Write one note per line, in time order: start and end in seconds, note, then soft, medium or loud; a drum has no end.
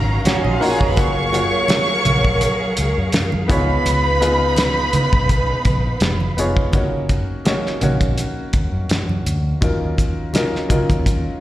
0.00 0.17 G#1 medium
0.00 0.95 D#3 medium
0.00 0.95 F#3 medium
0.00 0.60 A#3 medium
0.00 0.96 C#4 medium
0.00 0.61 D#4 medium
0.00 0.61 F4 medium
0.00 0.62 F#4 medium
0.00 0.24 A#4 medium
0.00 0.63 C#5 medium
0.00 6.70 F5 medium
0.00 0.24 A#5 loud
0.25 0.60 C#4 medium
0.25 0.60 F#4 medium
0.25 muted fingered electric bass stroke soft
0.25 snare loud
0.25 closed hi-hat medium
0.25 high conga medium
0.34 0.45 C#4 medium
0.34 0.44 C#5 medium
0.44 0.57 A#1 medium
0.44 0.53 D#4 medium
0.44 0.53 D#5 medium
0.44 high conga medium
0.51 0.61 F4 medium
0.51 0.61 F5 medium
0.59 0.91 A#3 medium
0.59 0.92 D#4 medium
0.59 0.92 F4 medium
0.59 0.81 F4 medium
0.59 0.71 F#4 medium
0.59 0.92 F#4 medium
0.59 0.80 A#4 medium
0.59 0.93 C#5 medium
0.59 0.70 F#5 medium
0.59 open hi-hat soft
0.69 0.80 G#4 medium
0.69 0.80 G#5 medium
0.80 0.94 F1 medium
0.80 1.16 G#4 medium
0.80 0.89 A#4 medium
0.80 1.15 C#5 medium
0.80 0.89 A#5 medium
0.80 kick medium
0.88 0.97 B4 medium
0.88 0.97 B5 medium
0.96 1.40 F#1 loud
0.96 3.48 F#3 medium
0.96 1.27 A#3 medium
0.96 1.28 F4 medium
0.96 1.28 F#4 medium
0.96 3.47 G#4 medium
0.96 1.29 G#4 medium
0.96 3.47 A#4 medium
0.96 3.10 C#5 medium
0.96 1.29 C#5 medium
0.96 3.10 C#6 medium
0.96 kick loud
0.96 closed hi-hat medium
0.96 muted conga soft
1.32 2.54 A#3 medium
1.32 2.54 F4 medium
1.32 2.54 F#4 medium
1.32 2.55 G#4 medium
1.32 2.55 C#5 medium
1.32 closed hi-hat medium
1.32 muted conga soft
1.68 snare loud
1.68 closed hi-hat medium
1.68 high conga medium
2.05 2.48 A#1 medium
2.05 closed hi-hat medium
2.05 muted conga soft
2.05 low conga medium
2.25 kick medium
2.41 closed hi-hat medium
2.41 muted conga medium
2.77 2.93 C#2 medium
2.77 closed hi-hat medium
2.98 3.10 F#2 medium
3.12 snare loud
3.12 closed hi-hat medium
3.12 high conga medium
3.32 3.47 F#2 medium
3.32 high conga medium
3.48 3.77 C#2 medium
3.48 6.71 C#3 medium
3.48 4.10 B3 medium
3.48 6.70 B3 medium
3.48 4.10 D#4 medium
3.48 6.70 D#4 medium
3.48 4.11 F4 medium
3.48 4.11 G#4 medium
3.48 6.33 B4 medium
3.48 4.11 C#5 loud
3.48 6.33 B5 loud
3.48 kick loud
3.48 closed hi-hat medium
3.86 4.90 C#2 loud
3.86 closed hi-hat medium
3.86 muted conga soft
4.20 5.42 B3 medium
4.20 5.42 D#4 medium
4.20 5.43 F4 medium
4.20 5.43 G#4 medium
4.20 5.43 B4 medium
4.20 closed hi-hat medium
4.20 muted conga soft
4.57 snare loud
4.57 closed hi-hat medium
4.57 high conga medium
4.93 muted fingered electric bass stroke soft
4.93 closed hi-hat medium
4.93 low conga medium
5.13 5.53 B1 medium
5.13 kick medium
5.29 kick medium
5.29 closed hi-hat medium
5.29 muted conga soft
5.65 5.93 A#1 medium
5.65 kick medium
5.65 closed hi-hat medium
5.65 low conga medium
6.00 6.29 F1 medium
6.00 snare loud
6.00 closed hi-hat medium
6.00 high conga medium
6.20 high conga medium
6.37 6.52 F1 medium
6.37 6.68 B3 medium
6.37 6.68 D#4 medium
6.37 6.69 F4 medium
6.37 6.69 G#4 medium
6.37 6.69 C#5 medium
6.37 closed hi-hat medium
6.57 kick medium
6.73 7.16 F#1 medium
6.73 7.34 A#3 medium
6.73 7.34 C#4 medium
6.73 7.35 D#4 medium
6.73 7.35 F#4 medium
6.73 7.36 C#5 medium
6.73 kick loud
6.73 closed hi-hat medium
6.73 muted conga soft
7.09 kick medium
7.09 closed hi-hat medium
7.09 muted conga soft
7.45 7.76 A#3 medium
7.45 7.76 C#4 medium
7.45 7.77 D#4 medium
7.45 7.77 F#4 medium
7.45 7.77 C#5 medium
7.45 snare loud
7.45 closed hi-hat medium
7.45 high conga medium
7.66 snare soft
7.80 8.24 A#1 medium
7.80 9.02 A#3 medium
7.80 9.02 C#4 medium
7.80 9.03 D#4 medium
7.80 9.03 F#4 medium
7.80 9.04 C#5 medium
7.80 closed hi-hat medium
7.80 low conga medium
8.01 kick medium
8.01 closed hi-hat soft
8.18 closed hi-hat medium
8.18 muted conga soft
8.53 8.68 D#2 medium
8.53 kick medium
8.53 closed hi-hat medium
8.72 8.85 F#2 loud
8.89 snare loud
8.89 closed hi-hat medium
8.89 high conga medium
9.09 9.22 F#2 medium
9.09 high conga medium
9.25 9.53 D2 medium
9.25 closed hi-hat medium
9.61 10.66 D#2 loud
9.61 10.22 F#3 medium
9.61 10.23 C#4 medium
9.61 10.23 D#4 medium
9.61 10.23 F4 medium
9.61 10.24 A#4 medium
9.61 kick loud
9.61 closed hi-hat medium
9.61 muted conga soft
9.98 kick medium
9.98 closed hi-hat medium
9.98 muted conga soft
10.33 10.64 F#3 medium
10.33 10.65 C#4 medium
10.33 10.65 D#4 medium
10.33 10.65 F4 medium
10.33 10.66 A#4 medium
10.33 snare loud
10.33 closed hi-hat medium
10.33 high conga medium
10.55 snare soft
10.69 11.40 F#3 medium
10.69 11.40 C#4 medium
10.69 11.40 D#4 medium
10.69 11.40 F4 medium
10.69 11.40 A#4 medium
10.69 muted fingered electric bass stroke soft
10.69 kick medium
10.69 closed hi-hat medium
10.69 muted conga soft
10.69 low conga medium
10.89 11.29 D#2 medium
10.89 kick medium
10.89 closed hi-hat soft
11.06 kick medium
11.06 closed hi-hat medium
11.06 muted conga soft